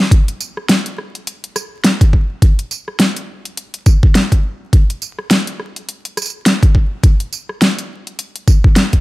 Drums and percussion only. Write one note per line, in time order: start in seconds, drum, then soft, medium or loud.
0.11 kick loud
0.11 closed hi-hat medium
0.28 closed hi-hat medium
0.41 tambourine medium
0.57 cross-stick soft
0.69 snare loud
0.69 closed hi-hat medium
0.86 closed hi-hat medium
0.98 cross-stick soft
1.15 closed hi-hat soft
1.27 closed hi-hat medium
1.44 closed hi-hat medium
1.56 cross-stick medium
1.56 tambourine medium
1.84 snare loud
1.84 closed hi-hat medium
2.01 kick loud
2.01 closed hi-hat medium
2.13 kick medium
2.42 kick loud
2.42 closed hi-hat medium
2.59 closed hi-hat medium
2.71 tambourine medium
2.88 cross-stick soft
3.00 snare loud
3.00 closed hi-hat medium
3.17 closed hi-hat medium
3.45 closed hi-hat soft
3.57 closed hi-hat medium
3.74 closed hi-hat medium
3.86 kick loud
3.86 tambourine medium
4.03 kick loud
4.15 snare loud
4.15 closed hi-hat medium
4.32 kick medium
4.32 closed hi-hat medium
4.73 kick loud
4.73 closed hi-hat medium
4.90 closed hi-hat medium
5.02 tambourine medium
5.19 cross-stick soft
5.31 snare loud
5.31 closed hi-hat medium
5.47 closed hi-hat medium
5.60 cross-stick soft
5.76 closed hi-hat soft
5.89 closed hi-hat medium
6.05 closed hi-hat medium
6.17 cross-stick medium
6.17 tambourine medium
6.22 tambourine medium
6.26 tambourine soft
6.30 tambourine soft
6.46 snare loud
6.46 closed hi-hat medium
6.63 kick loud
6.63 closed hi-hat medium
6.75 kick medium
7.04 kick loud
7.04 closed hi-hat medium
7.20 closed hi-hat medium
7.33 tambourine medium
7.49 cross-stick soft
7.62 snare loud
7.62 closed hi-hat medium
7.78 closed hi-hat medium
8.07 closed hi-hat soft
8.19 closed hi-hat medium
8.36 closed hi-hat medium
8.48 kick loud
8.48 tambourine medium
8.64 kick loud
8.76 snare loud
8.76 closed hi-hat medium
8.93 kick medium
8.93 closed hi-hat medium